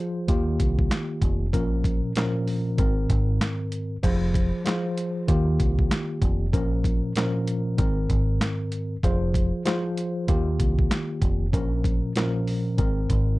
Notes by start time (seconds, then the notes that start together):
Already playing: F3 F4 G#4 C5
0.28 D#2 D#3 A#3 F4 G4, kick, closed hi-hat
0.60 C2, kick, closed hi-hat
0.79 kick
0.91 snare, clap, closed hi-hat
1.22 F1, kick, closed hi-hat
1.53 A#1 A#2 F3 C#4 A#4, kick, closed hi-hat
1.84 kick, closed hi-hat
2.16 A#2 F3 C#4 A#4, snare, clap, closed hi-hat
2.48 open hi-hat
2.78 G#1 G#2 D#3 C4 A#4, kick, closed hi-hat
3.10 G#1, kick, closed hi-hat
3.41 snare, clap, closed hi-hat
3.72 closed hi-hat
4.03 F1 F3 F4 G#4 C5, kick, closed hi-hat, crash
4.34 kick, closed hi-hat
4.65 F3 F4 G#4 C5, snare, clap, closed hi-hat
4.98 closed hi-hat
5.28 D#2 D#3 A#3 F4 G4, kick, closed hi-hat
5.60 C2, kick, closed hi-hat
5.79 kick
5.91 snare, clap, closed hi-hat
6.22 F1, kick, closed hi-hat
6.53 A#1 A#2 F3 C#4 A#4, kick, closed hi-hat
6.84 kick, closed hi-hat
7.16 A#2 F3 C#4 A#4, snare, clap, closed hi-hat
7.47 closed hi-hat
7.78 G#1 G#2 D#3 C4 A#4, kick, closed hi-hat
8.10 G#1, kick, closed hi-hat
8.41 snare, clap, closed hi-hat
8.72 closed hi-hat
9.03 F1 F3 F4 G#4 C5, kick, closed hi-hat
9.34 kick, closed hi-hat
9.65 F3 F4 G#4 C5, snare, clap, closed hi-hat
9.97 closed hi-hat
10.28 D#2 D#3 A#3 F4 G4, kick, closed hi-hat
10.60 C2, kick, closed hi-hat
10.79 kick
10.91 snare, clap, closed hi-hat
11.22 F1, kick, closed hi-hat
11.52 A#1 A#2 F3 C#4 A#4, kick, closed hi-hat
11.84 kick, closed hi-hat
12.16 A#2 F3 C#4 A#4, snare, clap, closed hi-hat
12.47 open hi-hat
12.78 G#1 G#2 D#3 C4 A#4, kick, closed hi-hat
13.10 G#1, kick, closed hi-hat